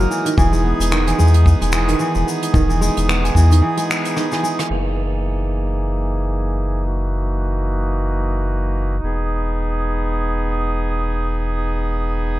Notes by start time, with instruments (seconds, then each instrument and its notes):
Already playing: kora D#3 G#3, accordion A#3 D#4 A#4
0.00 kora F#3, shaker
0.10 kora E3, shaker
0.25 kora D#3, closed hi-hat, shaker
0.37 sub bass E1, kora E3, accordion B3 D#4 G#4, kick, shaker
0.52 kora G#3, shaker
0.64 kora B3
0.79 sub bass E1, closed hi-hat, shaker
0.91 kora D#3, finger snap, shaker
1.06 kora E3, closed hi-hat, shaker
1.18 sub bass E2, kora G#3, shaker
1.27 shaker
1.34 closed hi-hat
1.46 kora B3, kick, shaker
1.61 sub bass E1, kora G#3, closed hi-hat, shaker
1.72 kora E3, finger snap, shaker
1.88 kora D#3, closed hi-hat, shaker
2.00 kora E3, shaker
2.14 sub bass E1, kora G#3, shaker
2.26 kora B3, shaker
2.43 closed hi-hat, shaker
2.53 sub bass E1, kora D#3, kick, shaker
2.69 kora E3, shaker
2.81 kora G#3, shaker
2.97 sub bass E1, closed hi-hat, shaker
3.08 kora B3, finger snap, shaker
3.23 kora G#3, closed hi-hat, shaker
3.35 sub bass E2, kora E3, kick, shaker
3.51 kora D#3, closed hi-hat, shaker
3.62 kora E3
3.77 kora G#3, closed hi-hat, shaker
3.89 kora B3, finger snap, shaker
4.05 closed hi-hat, shaker
4.16 kora D#3, cross-stick, shaker
4.31 kora E3, cross-stick, shaker
4.43 kora G#3, shaker
4.59 cross-stick, closed hi-hat, shaker
4.69 sub bass F#1, accordion E3 A#3 D#4 G#4, crash
6.87 accordion F#4
9.03 sub bass E1, accordion B3 G#4